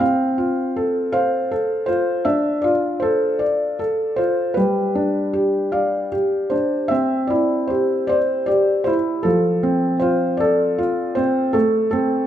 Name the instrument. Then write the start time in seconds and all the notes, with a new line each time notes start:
felt piano
0.00 C4 F5
0.38 F4
0.76 A4
1.12 C5 F5
1.51 A4
1.86 F4 C5
2.25 D4 E5
2.62 F4 D5
3.00 A4 C5
3.39 D5
3.79 A4
4.16 F4 C5
4.54 G3 B4
4.95 D4
5.33 G4
5.72 D5 F5
6.12 G4
6.50 D4 C5
6.88 C4 E5
7.27 E4 D5
7.67 G4 C5
8.07 C5 D5
8.46 G4 D5
8.84 E4 C5
9.23 F3 A4
9.63 C4
10.00 F4 C5
10.37 A4 D5
10.78 F4
11.15 C4 C5
11.53 A3 A4
11.91 C4 A4